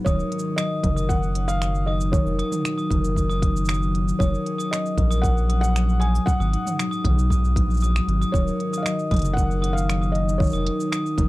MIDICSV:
0, 0, Header, 1, 6, 480
1, 0, Start_track
1, 0, Key_signature, -6, "minor"
1, 0, Tempo, 517241
1, 58, Time_signature, 4, 2, 24, 8
1, 10473, End_track
2, 0, Start_track
2, 0, Title_t, "Glockenspiel"
2, 0, Program_c, 0, 9
2, 58, Note_on_c, 0, 87, 73
2, 172, Note_off_c, 0, 87, 0
2, 539, Note_on_c, 0, 87, 84
2, 652, Note_off_c, 0, 87, 0
2, 895, Note_on_c, 0, 87, 78
2, 1011, Note_off_c, 0, 87, 0
2, 1375, Note_on_c, 0, 87, 69
2, 1490, Note_off_c, 0, 87, 0
2, 1740, Note_on_c, 0, 87, 71
2, 1853, Note_off_c, 0, 87, 0
2, 2217, Note_on_c, 0, 87, 77
2, 2332, Note_off_c, 0, 87, 0
2, 2577, Note_on_c, 0, 87, 75
2, 2691, Note_off_c, 0, 87, 0
2, 3058, Note_on_c, 0, 87, 84
2, 3172, Note_off_c, 0, 87, 0
2, 3419, Note_on_c, 0, 87, 73
2, 3532, Note_off_c, 0, 87, 0
2, 3897, Note_on_c, 0, 87, 81
2, 4011, Note_off_c, 0, 87, 0
2, 4254, Note_on_c, 0, 87, 73
2, 4370, Note_off_c, 0, 87, 0
2, 4738, Note_on_c, 0, 87, 78
2, 4852, Note_off_c, 0, 87, 0
2, 5098, Note_on_c, 0, 87, 73
2, 5212, Note_off_c, 0, 87, 0
2, 5574, Note_on_c, 0, 87, 75
2, 5690, Note_off_c, 0, 87, 0
2, 5942, Note_on_c, 0, 87, 71
2, 6054, Note_off_c, 0, 87, 0
2, 6414, Note_on_c, 0, 87, 75
2, 6530, Note_off_c, 0, 87, 0
2, 6778, Note_on_c, 0, 87, 79
2, 6892, Note_off_c, 0, 87, 0
2, 7261, Note_on_c, 0, 87, 78
2, 7373, Note_off_c, 0, 87, 0
2, 7624, Note_on_c, 0, 87, 75
2, 7735, Note_off_c, 0, 87, 0
2, 8104, Note_on_c, 0, 87, 77
2, 8215, Note_off_c, 0, 87, 0
2, 8459, Note_on_c, 0, 87, 78
2, 8572, Note_off_c, 0, 87, 0
2, 8928, Note_on_c, 0, 87, 78
2, 9047, Note_off_c, 0, 87, 0
2, 9295, Note_on_c, 0, 87, 73
2, 9410, Note_off_c, 0, 87, 0
2, 9776, Note_on_c, 0, 87, 67
2, 9891, Note_off_c, 0, 87, 0
2, 10134, Note_on_c, 0, 87, 88
2, 10250, Note_off_c, 0, 87, 0
2, 10473, End_track
3, 0, Start_track
3, 0, Title_t, "Felt piano"
3, 0, Program_c, 1, 0
3, 42, Note_on_c, 1, 73, 98
3, 496, Note_off_c, 1, 73, 0
3, 523, Note_on_c, 1, 75, 87
3, 1010, Note_on_c, 1, 78, 102
3, 1025, Note_off_c, 1, 75, 0
3, 1348, Note_off_c, 1, 78, 0
3, 1372, Note_on_c, 1, 77, 120
3, 1729, Note_on_c, 1, 75, 89
3, 1746, Note_off_c, 1, 77, 0
3, 1784, Note_off_c, 1, 75, 0
3, 1966, Note_on_c, 1, 73, 92
3, 2418, Note_off_c, 1, 73, 0
3, 3887, Note_on_c, 1, 73, 91
3, 4373, Note_on_c, 1, 75, 85
3, 4387, Note_off_c, 1, 73, 0
3, 4840, Note_on_c, 1, 78, 101
3, 4870, Note_off_c, 1, 75, 0
3, 5192, Note_off_c, 1, 78, 0
3, 5206, Note_on_c, 1, 78, 122
3, 5565, Note_on_c, 1, 80, 106
3, 5583, Note_off_c, 1, 78, 0
3, 5808, Note_on_c, 1, 78, 115
3, 5819, Note_off_c, 1, 80, 0
3, 6259, Note_off_c, 1, 78, 0
3, 7723, Note_on_c, 1, 73, 97
3, 8144, Note_on_c, 1, 77, 69
3, 8158, Note_off_c, 1, 73, 0
3, 8189, Note_on_c, 1, 75, 88
3, 8213, Note_off_c, 1, 77, 0
3, 8663, Note_on_c, 1, 78, 109
3, 8698, Note_off_c, 1, 75, 0
3, 9030, Note_on_c, 1, 77, 107
3, 9052, Note_off_c, 1, 78, 0
3, 9390, Note_on_c, 1, 75, 91
3, 9415, Note_off_c, 1, 77, 0
3, 9633, Note_on_c, 1, 73, 92
3, 9651, Note_off_c, 1, 75, 0
3, 10091, Note_off_c, 1, 73, 0
3, 10473, End_track
4, 0, Start_track
4, 0, Title_t, "Harp"
4, 0, Program_c, 2, 46
4, 0, Note_on_c, 2, 44, 82
4, 0, Note_on_c, 2, 54, 70
4, 0, Note_on_c, 2, 59, 60
4, 0, Note_on_c, 2, 61, 58
4, 0, Note_on_c, 2, 63, 55
4, 0, Note_on_c, 2, 66, 57
4, 0, Note_on_c, 2, 68, 70
4, 54, Note_on_c, 2, 51, 78
4, 62, Note_on_c, 2, 70, 69
4, 104, Note_off_c, 2, 44, 0
4, 118, Note_off_c, 2, 59, 0
4, 288, Note_off_c, 2, 63, 0
4, 292, Note_on_c, 2, 63, 61
4, 526, Note_off_c, 2, 54, 0
4, 530, Note_on_c, 2, 54, 69
4, 587, Note_off_c, 2, 61, 0
4, 769, Note_off_c, 2, 70, 0
4, 772, Note_on_c, 2, 70, 68
4, 963, Note_off_c, 2, 68, 0
4, 1001, Note_off_c, 2, 51, 0
4, 1012, Note_on_c, 2, 51, 75
4, 1253, Note_on_c, 2, 61, 61
4, 1257, Note_off_c, 2, 66, 0
4, 1500, Note_off_c, 2, 54, 0
4, 1504, Note_on_c, 2, 54, 71
4, 1735, Note_off_c, 2, 63, 0
4, 1738, Note_on_c, 2, 63, 65
4, 1966, Note_off_c, 2, 51, 0
4, 1977, Note_on_c, 2, 51, 72
4, 1982, Note_off_c, 2, 70, 0
4, 1985, Note_on_c, 2, 70, 60
4, 2212, Note_off_c, 2, 63, 0
4, 2216, Note_on_c, 2, 63, 61
4, 2455, Note_off_c, 2, 54, 0
4, 2459, Note_on_c, 2, 54, 69
4, 2696, Note_off_c, 2, 70, 0
4, 2700, Note_on_c, 2, 70, 74
4, 2927, Note_off_c, 2, 51, 0
4, 2938, Note_on_c, 2, 51, 80
4, 3172, Note_off_c, 2, 61, 0
4, 3175, Note_on_c, 2, 61, 65
4, 3410, Note_off_c, 2, 54, 0
4, 3414, Note_on_c, 2, 54, 77
4, 3656, Note_off_c, 2, 63, 0
4, 3659, Note_on_c, 2, 63, 62
4, 3895, Note_off_c, 2, 54, 0
4, 3899, Note_on_c, 2, 54, 80
4, 3903, Note_off_c, 2, 70, 0
4, 3907, Note_on_c, 2, 70, 64
4, 3944, Note_off_c, 2, 51, 0
4, 4143, Note_on_c, 2, 68, 65
4, 4373, Note_off_c, 2, 61, 0
4, 4376, Note_on_c, 2, 61, 74
4, 4616, Note_off_c, 2, 70, 0
4, 4620, Note_on_c, 2, 70, 70
4, 4854, Note_off_c, 2, 54, 0
4, 4858, Note_on_c, 2, 54, 85
4, 5105, Note_off_c, 2, 61, 0
4, 5109, Note_on_c, 2, 61, 60
4, 5337, Note_off_c, 2, 61, 0
4, 5341, Note_on_c, 2, 61, 76
4, 5574, Note_off_c, 2, 68, 0
4, 5577, Note_on_c, 2, 68, 63
4, 5820, Note_on_c, 2, 44, 74
4, 5822, Note_off_c, 2, 68, 0
4, 5826, Note_on_c, 2, 68, 69
4, 6054, Note_off_c, 2, 63, 0
4, 6058, Note_on_c, 2, 63, 64
4, 6299, Note_off_c, 2, 54, 0
4, 6302, Note_on_c, 2, 54, 74
4, 6539, Note_off_c, 2, 68, 0
4, 6543, Note_on_c, 2, 68, 69
4, 6588, Note_off_c, 2, 70, 0
4, 6768, Note_off_c, 2, 44, 0
4, 6779, Note_on_c, 2, 44, 75
4, 7024, Note_on_c, 2, 59, 64
4, 7259, Note_off_c, 2, 54, 0
4, 7263, Note_on_c, 2, 54, 77
4, 7499, Note_off_c, 2, 63, 0
4, 7502, Note_on_c, 2, 63, 59
4, 7734, Note_on_c, 2, 51, 73
4, 7743, Note_on_c, 2, 70, 67
4, 7784, Note_off_c, 2, 44, 0
4, 7799, Note_off_c, 2, 59, 0
4, 7975, Note_off_c, 2, 63, 0
4, 7979, Note_on_c, 2, 63, 61
4, 8030, Note_off_c, 2, 61, 0
4, 8217, Note_off_c, 2, 54, 0
4, 8220, Note_on_c, 2, 54, 70
4, 8457, Note_off_c, 2, 68, 0
4, 8461, Note_on_c, 2, 68, 70
4, 8577, Note_off_c, 2, 70, 0
4, 8581, Note_on_c, 2, 70, 62
4, 8686, Note_off_c, 2, 51, 0
4, 8698, Note_on_c, 2, 51, 78
4, 8938, Note_on_c, 2, 61, 60
4, 9172, Note_off_c, 2, 54, 0
4, 9176, Note_on_c, 2, 54, 74
4, 9414, Note_off_c, 2, 63, 0
4, 9417, Note_on_c, 2, 63, 64
4, 9641, Note_off_c, 2, 51, 0
4, 9651, Note_on_c, 2, 51, 80
4, 9654, Note_off_c, 2, 70, 0
4, 9658, Note_on_c, 2, 70, 69
4, 9889, Note_off_c, 2, 63, 0
4, 9892, Note_on_c, 2, 63, 64
4, 10126, Note_off_c, 2, 54, 0
4, 10130, Note_on_c, 2, 54, 72
4, 10369, Note_off_c, 2, 70, 0
4, 10373, Note_on_c, 2, 70, 72
4, 10473, Note_off_c, 2, 51, 0
4, 10473, Note_off_c, 2, 54, 0
4, 10473, Note_off_c, 2, 61, 0
4, 10473, Note_off_c, 2, 63, 0
4, 10473, Note_off_c, 2, 68, 0
4, 10473, Note_off_c, 2, 70, 0
4, 10473, End_track
5, 0, Start_track
5, 0, Title_t, "Analog synth bass"
5, 0, Program_c, 3, 38
5, 54, Note_on_c, 3, 27, 99
5, 208, Note_off_c, 3, 27, 0
5, 774, Note_on_c, 3, 30, 90
5, 2026, Note_off_c, 3, 30, 0
5, 2097, Note_on_c, 3, 29, 89
5, 2250, Note_off_c, 3, 29, 0
5, 2698, Note_on_c, 3, 30, 92
5, 3828, Note_off_c, 3, 30, 0
5, 3897, Note_on_c, 3, 30, 98
5, 4050, Note_off_c, 3, 30, 0
5, 4615, Note_on_c, 3, 34, 97
5, 5746, Note_off_c, 3, 34, 0
5, 5937, Note_on_c, 3, 32, 89
5, 6090, Note_off_c, 3, 32, 0
5, 6537, Note_on_c, 3, 35, 93
5, 7015, Note_on_c, 3, 34, 95
5, 7029, Note_off_c, 3, 35, 0
5, 7426, Note_off_c, 3, 34, 0
5, 7496, Note_on_c, 3, 32, 80
5, 7649, Note_off_c, 3, 32, 0
5, 7738, Note_on_c, 3, 27, 101
5, 7890, Note_off_c, 3, 27, 0
5, 8455, Note_on_c, 3, 30, 97
5, 9706, Note_off_c, 3, 30, 0
5, 9776, Note_on_c, 3, 29, 89
5, 9929, Note_off_c, 3, 29, 0
5, 10373, Note_on_c, 3, 30, 95
5, 10473, Note_off_c, 3, 30, 0
5, 10473, End_track
6, 0, Start_track
6, 0, Title_t, "Drums"
6, 54, Note_on_c, 9, 36, 121
6, 63, Note_on_c, 9, 69, 52
6, 147, Note_off_c, 9, 36, 0
6, 156, Note_off_c, 9, 69, 0
6, 184, Note_on_c, 9, 69, 31
6, 276, Note_off_c, 9, 69, 0
6, 296, Note_on_c, 9, 42, 79
6, 361, Note_on_c, 9, 69, 57
6, 388, Note_off_c, 9, 42, 0
6, 454, Note_off_c, 9, 69, 0
6, 536, Note_on_c, 9, 26, 111
6, 540, Note_on_c, 9, 69, 54
6, 629, Note_off_c, 9, 26, 0
6, 633, Note_off_c, 9, 69, 0
6, 774, Note_on_c, 9, 36, 102
6, 777, Note_on_c, 9, 42, 96
6, 777, Note_on_c, 9, 45, 76
6, 867, Note_off_c, 9, 36, 0
6, 870, Note_off_c, 9, 42, 0
6, 870, Note_off_c, 9, 45, 0
6, 903, Note_on_c, 9, 69, 63
6, 996, Note_off_c, 9, 69, 0
6, 1014, Note_on_c, 9, 36, 103
6, 1022, Note_on_c, 9, 69, 56
6, 1107, Note_off_c, 9, 36, 0
6, 1115, Note_off_c, 9, 69, 0
6, 1142, Note_on_c, 9, 69, 32
6, 1234, Note_off_c, 9, 69, 0
6, 1255, Note_on_c, 9, 42, 94
6, 1348, Note_off_c, 9, 42, 0
6, 1379, Note_on_c, 9, 69, 70
6, 1472, Note_off_c, 9, 69, 0
6, 1500, Note_on_c, 9, 26, 105
6, 1504, Note_on_c, 9, 69, 55
6, 1593, Note_off_c, 9, 26, 0
6, 1597, Note_off_c, 9, 69, 0
6, 1625, Note_on_c, 9, 69, 33
6, 1718, Note_off_c, 9, 69, 0
6, 1862, Note_on_c, 9, 69, 63
6, 1955, Note_off_c, 9, 69, 0
6, 1976, Note_on_c, 9, 36, 125
6, 1985, Note_on_c, 9, 69, 55
6, 2068, Note_off_c, 9, 36, 0
6, 2078, Note_off_c, 9, 69, 0
6, 2104, Note_on_c, 9, 69, 32
6, 2197, Note_off_c, 9, 69, 0
6, 2220, Note_on_c, 9, 42, 78
6, 2313, Note_off_c, 9, 42, 0
6, 2337, Note_on_c, 9, 45, 57
6, 2341, Note_on_c, 9, 69, 71
6, 2430, Note_off_c, 9, 45, 0
6, 2434, Note_off_c, 9, 69, 0
6, 2461, Note_on_c, 9, 26, 109
6, 2464, Note_on_c, 9, 69, 64
6, 2553, Note_off_c, 9, 26, 0
6, 2557, Note_off_c, 9, 69, 0
6, 2585, Note_on_c, 9, 69, 32
6, 2678, Note_off_c, 9, 69, 0
6, 2696, Note_on_c, 9, 36, 107
6, 2705, Note_on_c, 9, 42, 87
6, 2705, Note_on_c, 9, 45, 79
6, 2789, Note_off_c, 9, 36, 0
6, 2798, Note_off_c, 9, 42, 0
6, 2798, Note_off_c, 9, 45, 0
6, 2825, Note_on_c, 9, 69, 65
6, 2918, Note_off_c, 9, 69, 0
6, 2936, Note_on_c, 9, 36, 62
6, 2947, Note_on_c, 9, 69, 56
6, 3029, Note_off_c, 9, 36, 0
6, 3039, Note_off_c, 9, 69, 0
6, 3068, Note_on_c, 9, 69, 35
6, 3161, Note_off_c, 9, 69, 0
6, 3177, Note_on_c, 9, 36, 111
6, 3181, Note_on_c, 9, 42, 88
6, 3269, Note_off_c, 9, 36, 0
6, 3274, Note_off_c, 9, 42, 0
6, 3308, Note_on_c, 9, 69, 65
6, 3388, Note_off_c, 9, 69, 0
6, 3388, Note_on_c, 9, 69, 51
6, 3423, Note_on_c, 9, 26, 111
6, 3427, Note_off_c, 9, 69, 0
6, 3427, Note_on_c, 9, 69, 63
6, 3470, Note_off_c, 9, 69, 0
6, 3470, Note_on_c, 9, 69, 45
6, 3516, Note_off_c, 9, 26, 0
6, 3550, Note_off_c, 9, 69, 0
6, 3550, Note_on_c, 9, 69, 34
6, 3643, Note_off_c, 9, 69, 0
6, 3665, Note_on_c, 9, 42, 82
6, 3758, Note_off_c, 9, 42, 0
6, 3789, Note_on_c, 9, 69, 63
6, 3881, Note_off_c, 9, 69, 0
6, 3897, Note_on_c, 9, 36, 124
6, 3910, Note_on_c, 9, 69, 55
6, 3990, Note_off_c, 9, 36, 0
6, 4003, Note_off_c, 9, 69, 0
6, 4033, Note_on_c, 9, 69, 33
6, 4126, Note_off_c, 9, 69, 0
6, 4143, Note_on_c, 9, 42, 76
6, 4235, Note_off_c, 9, 42, 0
6, 4266, Note_on_c, 9, 69, 70
6, 4359, Note_off_c, 9, 69, 0
6, 4387, Note_on_c, 9, 26, 107
6, 4391, Note_on_c, 9, 69, 61
6, 4480, Note_off_c, 9, 26, 0
6, 4484, Note_off_c, 9, 69, 0
6, 4509, Note_on_c, 9, 69, 36
6, 4602, Note_off_c, 9, 69, 0
6, 4617, Note_on_c, 9, 36, 108
6, 4622, Note_on_c, 9, 42, 85
6, 4710, Note_off_c, 9, 36, 0
6, 4714, Note_off_c, 9, 42, 0
6, 4745, Note_on_c, 9, 69, 67
6, 4838, Note_off_c, 9, 69, 0
6, 4857, Note_on_c, 9, 36, 100
6, 4866, Note_on_c, 9, 69, 59
6, 4950, Note_off_c, 9, 36, 0
6, 4959, Note_off_c, 9, 69, 0
6, 4988, Note_on_c, 9, 69, 35
6, 5081, Note_off_c, 9, 69, 0
6, 5101, Note_on_c, 9, 42, 90
6, 5193, Note_off_c, 9, 42, 0
6, 5228, Note_on_c, 9, 69, 69
6, 5321, Note_off_c, 9, 69, 0
6, 5345, Note_on_c, 9, 26, 98
6, 5349, Note_on_c, 9, 69, 61
6, 5438, Note_off_c, 9, 26, 0
6, 5442, Note_off_c, 9, 69, 0
6, 5467, Note_on_c, 9, 69, 34
6, 5560, Note_off_c, 9, 69, 0
6, 5582, Note_on_c, 9, 42, 85
6, 5675, Note_off_c, 9, 42, 0
6, 5708, Note_on_c, 9, 69, 68
6, 5800, Note_off_c, 9, 69, 0
6, 5818, Note_on_c, 9, 36, 124
6, 5830, Note_on_c, 9, 69, 54
6, 5911, Note_off_c, 9, 36, 0
6, 5922, Note_off_c, 9, 69, 0
6, 5950, Note_on_c, 9, 69, 35
6, 6043, Note_off_c, 9, 69, 0
6, 6064, Note_on_c, 9, 42, 81
6, 6157, Note_off_c, 9, 42, 0
6, 6185, Note_on_c, 9, 45, 58
6, 6189, Note_on_c, 9, 69, 70
6, 6278, Note_off_c, 9, 45, 0
6, 6282, Note_off_c, 9, 69, 0
6, 6304, Note_on_c, 9, 26, 103
6, 6308, Note_on_c, 9, 69, 61
6, 6397, Note_off_c, 9, 26, 0
6, 6401, Note_off_c, 9, 69, 0
6, 6426, Note_on_c, 9, 69, 37
6, 6519, Note_off_c, 9, 69, 0
6, 6537, Note_on_c, 9, 36, 108
6, 6542, Note_on_c, 9, 42, 88
6, 6542, Note_on_c, 9, 45, 76
6, 6630, Note_off_c, 9, 36, 0
6, 6634, Note_off_c, 9, 42, 0
6, 6634, Note_off_c, 9, 45, 0
6, 6670, Note_on_c, 9, 69, 68
6, 6762, Note_off_c, 9, 69, 0
6, 6777, Note_on_c, 9, 36, 62
6, 6792, Note_on_c, 9, 69, 59
6, 6870, Note_off_c, 9, 36, 0
6, 6885, Note_off_c, 9, 69, 0
6, 6910, Note_on_c, 9, 69, 36
6, 7003, Note_off_c, 9, 69, 0
6, 7016, Note_on_c, 9, 36, 109
6, 7025, Note_on_c, 9, 42, 90
6, 7109, Note_off_c, 9, 36, 0
6, 7117, Note_off_c, 9, 42, 0
6, 7151, Note_on_c, 9, 69, 33
6, 7181, Note_off_c, 9, 69, 0
6, 7181, Note_on_c, 9, 69, 40
6, 7208, Note_off_c, 9, 69, 0
6, 7208, Note_on_c, 9, 69, 43
6, 7240, Note_off_c, 9, 69, 0
6, 7240, Note_on_c, 9, 69, 56
6, 7271, Note_off_c, 9, 69, 0
6, 7271, Note_on_c, 9, 69, 61
6, 7363, Note_off_c, 9, 69, 0
6, 7387, Note_on_c, 9, 26, 95
6, 7391, Note_on_c, 9, 69, 34
6, 7479, Note_off_c, 9, 26, 0
6, 7483, Note_off_c, 9, 69, 0
6, 7504, Note_on_c, 9, 42, 76
6, 7597, Note_off_c, 9, 42, 0
6, 7628, Note_on_c, 9, 69, 67
6, 7721, Note_off_c, 9, 69, 0
6, 7737, Note_on_c, 9, 36, 127
6, 7749, Note_on_c, 9, 69, 50
6, 7830, Note_off_c, 9, 36, 0
6, 7842, Note_off_c, 9, 69, 0
6, 7866, Note_on_c, 9, 69, 32
6, 7959, Note_off_c, 9, 69, 0
6, 7982, Note_on_c, 9, 42, 71
6, 8075, Note_off_c, 9, 42, 0
6, 8104, Note_on_c, 9, 69, 61
6, 8197, Note_off_c, 9, 69, 0
6, 8220, Note_on_c, 9, 26, 99
6, 8224, Note_on_c, 9, 69, 63
6, 8313, Note_off_c, 9, 26, 0
6, 8317, Note_off_c, 9, 69, 0
6, 8344, Note_on_c, 9, 69, 34
6, 8437, Note_off_c, 9, 69, 0
6, 8455, Note_on_c, 9, 36, 110
6, 8456, Note_on_c, 9, 42, 39
6, 8456, Note_on_c, 9, 45, 85
6, 8481, Note_off_c, 9, 42, 0
6, 8481, Note_on_c, 9, 42, 49
6, 8505, Note_off_c, 9, 42, 0
6, 8505, Note_on_c, 9, 42, 56
6, 8531, Note_off_c, 9, 42, 0
6, 8531, Note_on_c, 9, 42, 62
6, 8548, Note_off_c, 9, 36, 0
6, 8549, Note_off_c, 9, 45, 0
6, 8555, Note_off_c, 9, 42, 0
6, 8555, Note_on_c, 9, 42, 75
6, 8582, Note_on_c, 9, 69, 70
6, 8648, Note_off_c, 9, 42, 0
6, 8675, Note_off_c, 9, 69, 0
6, 8695, Note_on_c, 9, 36, 97
6, 8706, Note_on_c, 9, 69, 54
6, 8788, Note_off_c, 9, 36, 0
6, 8799, Note_off_c, 9, 69, 0
6, 8827, Note_on_c, 9, 69, 32
6, 8920, Note_off_c, 9, 69, 0
6, 8944, Note_on_c, 9, 42, 94
6, 9037, Note_off_c, 9, 42, 0
6, 9071, Note_on_c, 9, 69, 65
6, 9164, Note_off_c, 9, 69, 0
6, 9183, Note_on_c, 9, 26, 97
6, 9187, Note_on_c, 9, 69, 56
6, 9275, Note_off_c, 9, 26, 0
6, 9279, Note_off_c, 9, 69, 0
6, 9306, Note_on_c, 9, 69, 34
6, 9399, Note_off_c, 9, 69, 0
6, 9421, Note_on_c, 9, 42, 80
6, 9513, Note_off_c, 9, 42, 0
6, 9548, Note_on_c, 9, 69, 63
6, 9641, Note_off_c, 9, 69, 0
6, 9653, Note_on_c, 9, 36, 116
6, 9667, Note_on_c, 9, 69, 24
6, 9688, Note_off_c, 9, 69, 0
6, 9688, Note_on_c, 9, 69, 29
6, 9711, Note_off_c, 9, 69, 0
6, 9711, Note_on_c, 9, 69, 36
6, 9738, Note_off_c, 9, 69, 0
6, 9738, Note_on_c, 9, 69, 39
6, 9745, Note_off_c, 9, 36, 0
6, 9760, Note_off_c, 9, 69, 0
6, 9760, Note_on_c, 9, 69, 45
6, 9783, Note_off_c, 9, 69, 0
6, 9783, Note_on_c, 9, 69, 32
6, 9876, Note_off_c, 9, 69, 0
6, 9897, Note_on_c, 9, 42, 79
6, 9990, Note_off_c, 9, 42, 0
6, 10024, Note_on_c, 9, 69, 59
6, 10117, Note_off_c, 9, 69, 0
6, 10139, Note_on_c, 9, 26, 96
6, 10143, Note_on_c, 9, 69, 54
6, 10231, Note_off_c, 9, 26, 0
6, 10235, Note_off_c, 9, 69, 0
6, 10265, Note_on_c, 9, 69, 33
6, 10358, Note_off_c, 9, 69, 0
6, 10373, Note_on_c, 9, 36, 100
6, 10378, Note_on_c, 9, 42, 93
6, 10378, Note_on_c, 9, 45, 78
6, 10400, Note_off_c, 9, 45, 0
6, 10400, Note_on_c, 9, 45, 63
6, 10422, Note_off_c, 9, 45, 0
6, 10422, Note_on_c, 9, 45, 52
6, 10465, Note_off_c, 9, 36, 0
6, 10471, Note_off_c, 9, 42, 0
6, 10473, Note_off_c, 9, 45, 0
6, 10473, End_track
0, 0, End_of_file